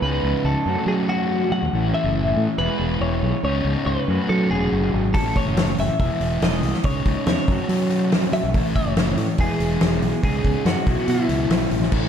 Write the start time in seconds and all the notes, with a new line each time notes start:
0.02 C#2 C#3 G#3 C#4 D#4 B4
0.24 C#2
0.44 C#2 A4
0.66 F#2 F#3 A3 C#4 F#4
0.86 F#3 G#4
1.09 F#4
1.52 F#3 F#5
1.62 D#2
1.72 A1 A2 E3 A3 C#4 E4
1.94 E5
2.04 F#1
2.37 A2
2.58 E1 E3 G#3 B3 E4 B4
2.79 E1
3.01 E1 C#5
3.23 B1
3.43 C#2 C#3 G#3 C#4 D#4 C#5
3.65 C#2
3.86 C#2 B4
4.08 F#2 F#3 A3 C#4 F#4
4.29 F#3 A4
4.51 E1 G#4
4.72 F#1
4.94 G#1
5.14 A1 A2 E3 A3 C#4 E4 A4, kick, open hi-hat
5.36 C#5, kick, open hi-hat
5.46 F#1
5.57 snare, open hi-hat
5.78 F#1 E5, open hi-hat
5.98 E1 E3 G#3 B3 E4 E5, kick, open hi-hat
6.21 E1, open hi-hat
6.42 E1 D#5, snare, open hi-hat
6.63 C2, open hi-hat
6.74 snare
6.83 C#2 C#3 G#3 C#4 D#4 C#5, kick, open hi-hat
7.05 C#2, kick, open hi-hat
7.26 E2 C#5, snare, open hi-hat
7.38 snare
7.47 F#2 F#3 A3 C#4 F#4, kick, open hi-hat
7.69 F#3, open hi-hat
7.90 open hi-hat
8.12 snare, open hi-hat
8.32 F#3 E5, open hi-hat
8.44 B1
8.53 A1 A2 E3 A3 C#4 E4, kick, open hi-hat
8.76 C#5, kick, open hi-hat
8.86 F#1
8.97 snare, open hi-hat
9.17 A2, open hi-hat
9.38 E1 E3 G#3 B3 E4 G#4, kick, open hi-hat
9.60 E1, open hi-hat
9.81 E1, snare, open hi-hat
10.02 B1, open hi-hat
10.23 C#2 C#3 G#3 C#4 D#4 G#4, kick, open hi-hat
10.44 C#2, kick, open hi-hat
10.65 F#2 F#4, snare, open hi-hat
10.86 B1 B2 F#3 B3 E4, kick, open hi-hat
11.08 B2 E4, open hi-hat
11.29 C#2, open hi-hat
11.50 B1, snare, open hi-hat
11.71 A1, open hi-hat
11.82 snare
11.92 A1 A2 E3 A3 C#4 E4, kick, crash